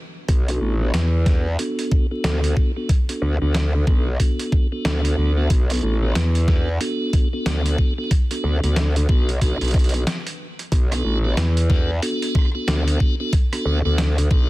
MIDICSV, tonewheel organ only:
0, 0, Header, 1, 2, 480
1, 0, Start_track
1, 0, Key_signature, 2, "minor"
1, 0, Tempo, 652174
1, 210, Time_signature, 4, 2, 24, 8
1, 10669, End_track
2, 0, Start_track
2, 0, Title_t, "Tonewheel organ"
2, 0, Program_c, 0, 16
2, 355, Note_on_c, 0, 59, 67
2, 355, Note_on_c, 0, 62, 66
2, 355, Note_on_c, 0, 66, 65
2, 355, Note_on_c, 0, 69, 79
2, 551, Note_off_c, 0, 62, 0
2, 552, Note_off_c, 0, 59, 0
2, 552, Note_off_c, 0, 66, 0
2, 552, Note_off_c, 0, 69, 0
2, 595, Note_on_c, 0, 59, 79
2, 596, Note_on_c, 0, 62, 74
2, 596, Note_on_c, 0, 66, 73
2, 596, Note_on_c, 0, 69, 86
2, 705, Note_off_c, 0, 59, 0
2, 705, Note_off_c, 0, 62, 0
2, 705, Note_off_c, 0, 66, 0
2, 705, Note_off_c, 0, 69, 0
2, 930, Note_on_c, 0, 66, 71
2, 931, Note_on_c, 0, 59, 82
2, 931, Note_on_c, 0, 62, 73
2, 931, Note_on_c, 0, 69, 92
2, 1085, Note_off_c, 0, 59, 0
2, 1085, Note_off_c, 0, 62, 0
2, 1085, Note_off_c, 0, 66, 0
2, 1085, Note_off_c, 0, 69, 0
2, 1170, Note_on_c, 0, 59, 89
2, 1170, Note_on_c, 0, 66, 80
2, 1170, Note_on_c, 0, 69, 92
2, 1171, Note_on_c, 0, 62, 82
2, 1521, Note_off_c, 0, 59, 0
2, 1521, Note_off_c, 0, 62, 0
2, 1521, Note_off_c, 0, 66, 0
2, 1521, Note_off_c, 0, 69, 0
2, 1555, Note_on_c, 0, 59, 73
2, 1555, Note_on_c, 0, 62, 70
2, 1555, Note_on_c, 0, 66, 68
2, 1555, Note_on_c, 0, 69, 85
2, 2000, Note_off_c, 0, 59, 0
2, 2000, Note_off_c, 0, 62, 0
2, 2000, Note_off_c, 0, 66, 0
2, 2000, Note_off_c, 0, 69, 0
2, 2035, Note_on_c, 0, 59, 90
2, 2035, Note_on_c, 0, 62, 81
2, 2035, Note_on_c, 0, 66, 80
2, 2035, Note_on_c, 0, 69, 99
2, 2144, Note_off_c, 0, 62, 0
2, 2145, Note_off_c, 0, 59, 0
2, 2145, Note_off_c, 0, 66, 0
2, 2145, Note_off_c, 0, 69, 0
2, 2274, Note_on_c, 0, 59, 72
2, 2274, Note_on_c, 0, 62, 64
2, 2274, Note_on_c, 0, 69, 77
2, 2275, Note_on_c, 0, 66, 64
2, 2471, Note_off_c, 0, 59, 0
2, 2471, Note_off_c, 0, 62, 0
2, 2471, Note_off_c, 0, 66, 0
2, 2471, Note_off_c, 0, 69, 0
2, 2515, Note_on_c, 0, 66, 71
2, 2515, Note_on_c, 0, 69, 88
2, 2516, Note_on_c, 0, 59, 79
2, 2516, Note_on_c, 0, 62, 72
2, 2625, Note_off_c, 0, 59, 0
2, 2625, Note_off_c, 0, 62, 0
2, 2625, Note_off_c, 0, 66, 0
2, 2625, Note_off_c, 0, 69, 0
2, 2849, Note_on_c, 0, 59, 82
2, 2849, Note_on_c, 0, 66, 74
2, 2849, Note_on_c, 0, 69, 90
2, 2850, Note_on_c, 0, 62, 72
2, 3005, Note_off_c, 0, 59, 0
2, 3005, Note_off_c, 0, 62, 0
2, 3005, Note_off_c, 0, 66, 0
2, 3005, Note_off_c, 0, 69, 0
2, 3088, Note_on_c, 0, 59, 86
2, 3089, Note_on_c, 0, 62, 83
2, 3089, Note_on_c, 0, 66, 82
2, 3089, Note_on_c, 0, 69, 96
2, 3440, Note_off_c, 0, 59, 0
2, 3440, Note_off_c, 0, 62, 0
2, 3440, Note_off_c, 0, 66, 0
2, 3440, Note_off_c, 0, 69, 0
2, 3475, Note_on_c, 0, 59, 74
2, 3475, Note_on_c, 0, 62, 68
2, 3475, Note_on_c, 0, 66, 71
2, 3475, Note_on_c, 0, 69, 85
2, 3920, Note_off_c, 0, 59, 0
2, 3920, Note_off_c, 0, 62, 0
2, 3920, Note_off_c, 0, 66, 0
2, 3920, Note_off_c, 0, 69, 0
2, 3954, Note_on_c, 0, 59, 88
2, 3954, Note_on_c, 0, 62, 80
2, 3954, Note_on_c, 0, 66, 80
2, 3954, Note_on_c, 0, 69, 97
2, 4064, Note_off_c, 0, 59, 0
2, 4064, Note_off_c, 0, 62, 0
2, 4064, Note_off_c, 0, 66, 0
2, 4064, Note_off_c, 0, 69, 0
2, 4194, Note_on_c, 0, 59, 70
2, 4194, Note_on_c, 0, 66, 63
2, 4195, Note_on_c, 0, 62, 66
2, 4195, Note_on_c, 0, 69, 78
2, 4391, Note_off_c, 0, 59, 0
2, 4391, Note_off_c, 0, 66, 0
2, 4391, Note_off_c, 0, 69, 0
2, 4392, Note_off_c, 0, 62, 0
2, 4434, Note_on_c, 0, 59, 82
2, 4434, Note_on_c, 0, 62, 74
2, 4434, Note_on_c, 0, 66, 73
2, 4434, Note_on_c, 0, 69, 86
2, 4544, Note_off_c, 0, 59, 0
2, 4544, Note_off_c, 0, 62, 0
2, 4544, Note_off_c, 0, 66, 0
2, 4544, Note_off_c, 0, 69, 0
2, 4768, Note_on_c, 0, 62, 74
2, 4768, Note_on_c, 0, 66, 71
2, 4769, Note_on_c, 0, 59, 83
2, 4769, Note_on_c, 0, 69, 91
2, 4924, Note_off_c, 0, 59, 0
2, 4924, Note_off_c, 0, 62, 0
2, 4924, Note_off_c, 0, 66, 0
2, 4924, Note_off_c, 0, 69, 0
2, 5009, Note_on_c, 0, 59, 85
2, 5009, Note_on_c, 0, 69, 96
2, 5010, Note_on_c, 0, 62, 83
2, 5010, Note_on_c, 0, 66, 77
2, 5360, Note_off_c, 0, 59, 0
2, 5360, Note_off_c, 0, 62, 0
2, 5360, Note_off_c, 0, 66, 0
2, 5360, Note_off_c, 0, 69, 0
2, 5396, Note_on_c, 0, 59, 75
2, 5396, Note_on_c, 0, 62, 68
2, 5396, Note_on_c, 0, 66, 68
2, 5396, Note_on_c, 0, 69, 88
2, 5841, Note_off_c, 0, 59, 0
2, 5841, Note_off_c, 0, 62, 0
2, 5841, Note_off_c, 0, 66, 0
2, 5841, Note_off_c, 0, 69, 0
2, 5875, Note_on_c, 0, 59, 91
2, 5875, Note_on_c, 0, 62, 84
2, 5875, Note_on_c, 0, 66, 81
2, 5875, Note_on_c, 0, 69, 98
2, 5984, Note_off_c, 0, 59, 0
2, 5984, Note_off_c, 0, 66, 0
2, 5984, Note_off_c, 0, 69, 0
2, 5985, Note_off_c, 0, 62, 0
2, 6116, Note_on_c, 0, 59, 73
2, 6116, Note_on_c, 0, 62, 65
2, 6116, Note_on_c, 0, 66, 64
2, 6116, Note_on_c, 0, 69, 79
2, 6312, Note_off_c, 0, 59, 0
2, 6312, Note_off_c, 0, 62, 0
2, 6312, Note_off_c, 0, 66, 0
2, 6312, Note_off_c, 0, 69, 0
2, 6356, Note_on_c, 0, 62, 77
2, 6356, Note_on_c, 0, 66, 75
2, 6356, Note_on_c, 0, 69, 89
2, 6357, Note_on_c, 0, 59, 80
2, 6465, Note_off_c, 0, 59, 0
2, 6465, Note_off_c, 0, 62, 0
2, 6465, Note_off_c, 0, 66, 0
2, 6465, Note_off_c, 0, 69, 0
2, 6690, Note_on_c, 0, 59, 81
2, 6690, Note_on_c, 0, 62, 73
2, 6690, Note_on_c, 0, 66, 71
2, 6690, Note_on_c, 0, 69, 91
2, 6845, Note_off_c, 0, 59, 0
2, 6845, Note_off_c, 0, 62, 0
2, 6845, Note_off_c, 0, 66, 0
2, 6845, Note_off_c, 0, 69, 0
2, 6930, Note_on_c, 0, 59, 85
2, 6930, Note_on_c, 0, 62, 78
2, 6930, Note_on_c, 0, 66, 81
2, 6930, Note_on_c, 0, 69, 97
2, 7151, Note_off_c, 0, 59, 0
2, 7151, Note_off_c, 0, 62, 0
2, 7151, Note_off_c, 0, 66, 0
2, 7151, Note_off_c, 0, 69, 0
2, 7169, Note_on_c, 0, 62, 65
2, 7169, Note_on_c, 0, 66, 67
2, 7170, Note_on_c, 0, 59, 71
2, 7170, Note_on_c, 0, 71, 77
2, 7387, Note_off_c, 0, 59, 0
2, 7387, Note_off_c, 0, 62, 0
2, 7387, Note_off_c, 0, 66, 0
2, 7387, Note_off_c, 0, 71, 0
2, 8035, Note_on_c, 0, 59, 71
2, 8035, Note_on_c, 0, 62, 67
2, 8035, Note_on_c, 0, 66, 66
2, 8035, Note_on_c, 0, 69, 79
2, 8231, Note_off_c, 0, 59, 0
2, 8231, Note_off_c, 0, 62, 0
2, 8231, Note_off_c, 0, 66, 0
2, 8232, Note_off_c, 0, 69, 0
2, 8274, Note_on_c, 0, 59, 80
2, 8274, Note_on_c, 0, 62, 72
2, 8274, Note_on_c, 0, 66, 74
2, 8274, Note_on_c, 0, 69, 90
2, 8384, Note_off_c, 0, 59, 0
2, 8384, Note_off_c, 0, 62, 0
2, 8384, Note_off_c, 0, 66, 0
2, 8384, Note_off_c, 0, 69, 0
2, 8610, Note_on_c, 0, 59, 80
2, 8610, Note_on_c, 0, 62, 72
2, 8610, Note_on_c, 0, 66, 74
2, 8610, Note_on_c, 0, 69, 90
2, 8765, Note_off_c, 0, 59, 0
2, 8765, Note_off_c, 0, 62, 0
2, 8765, Note_off_c, 0, 66, 0
2, 8765, Note_off_c, 0, 69, 0
2, 8849, Note_on_c, 0, 62, 84
2, 8850, Note_on_c, 0, 59, 89
2, 8850, Note_on_c, 0, 66, 78
2, 8850, Note_on_c, 0, 69, 96
2, 9200, Note_off_c, 0, 59, 0
2, 9200, Note_off_c, 0, 62, 0
2, 9200, Note_off_c, 0, 66, 0
2, 9200, Note_off_c, 0, 69, 0
2, 9235, Note_on_c, 0, 59, 77
2, 9235, Note_on_c, 0, 69, 86
2, 9236, Note_on_c, 0, 62, 71
2, 9236, Note_on_c, 0, 66, 71
2, 9680, Note_off_c, 0, 59, 0
2, 9681, Note_off_c, 0, 62, 0
2, 9681, Note_off_c, 0, 66, 0
2, 9681, Note_off_c, 0, 69, 0
2, 9716, Note_on_c, 0, 59, 88
2, 9716, Note_on_c, 0, 62, 84
2, 9716, Note_on_c, 0, 66, 81
2, 9716, Note_on_c, 0, 69, 96
2, 9825, Note_off_c, 0, 59, 0
2, 9825, Note_off_c, 0, 62, 0
2, 9825, Note_off_c, 0, 66, 0
2, 9825, Note_off_c, 0, 69, 0
2, 9956, Note_on_c, 0, 59, 72
2, 9957, Note_on_c, 0, 62, 67
2, 9957, Note_on_c, 0, 66, 64
2, 9957, Note_on_c, 0, 69, 81
2, 10152, Note_off_c, 0, 59, 0
2, 10152, Note_off_c, 0, 62, 0
2, 10152, Note_off_c, 0, 69, 0
2, 10153, Note_off_c, 0, 66, 0
2, 10197, Note_on_c, 0, 59, 83
2, 10197, Note_on_c, 0, 62, 75
2, 10197, Note_on_c, 0, 66, 75
2, 10197, Note_on_c, 0, 69, 90
2, 10305, Note_off_c, 0, 59, 0
2, 10305, Note_off_c, 0, 66, 0
2, 10306, Note_off_c, 0, 62, 0
2, 10306, Note_off_c, 0, 69, 0
2, 10530, Note_on_c, 0, 59, 83
2, 10530, Note_on_c, 0, 62, 74
2, 10530, Note_on_c, 0, 66, 75
2, 10530, Note_on_c, 0, 69, 90
2, 10669, Note_off_c, 0, 59, 0
2, 10669, Note_off_c, 0, 62, 0
2, 10669, Note_off_c, 0, 66, 0
2, 10669, Note_off_c, 0, 69, 0
2, 10669, End_track
0, 0, End_of_file